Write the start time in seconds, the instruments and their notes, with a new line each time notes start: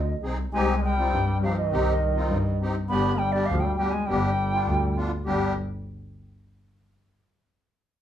Already playing: double bass D2, flute D#5
0.22 double bass C2, accordion C4 D#4 G#4
0.52 double bass C2, duduk G#3, accordion C4 D#4 G4, flute G#5
0.83 duduk G3, flute G5
0.98 accordion C4 D#4 F4
1.12 double bass G2
1.27 duduk G3
1.41 duduk F3, accordion C4 D#4 G4, flute F5
1.55 duduk D#3, flute D#5
1.71 double bass C2, accordion C4 D#4 G4
2.16 accordion C4 D#4 F4
2.30 double bass G2
2.61 accordion C4 D#4 G4
2.87 double bass G1, duduk B3, accordion B3 D4 G4, flute B5
3.18 duduk G3, flute G5
3.32 accordion B3 D4 G4, flute D5
3.46 double bass D2, flute F5
3.50 duduk F3
3.60 flute G5
3.64 duduk G3
3.76 duduk G3, accordion B3 D4 G4, flute G5
3.90 duduk G#3, flute G#5
4.06 double bass G1, duduk G3, accordion B3 D4 G4, flute G5
4.52 accordion B3 D4 F4
4.67 double bass D2
4.96 accordion B3 D4 F4
5.25 double bass G1, duduk G3, accordion B3 D4 G4, flute G5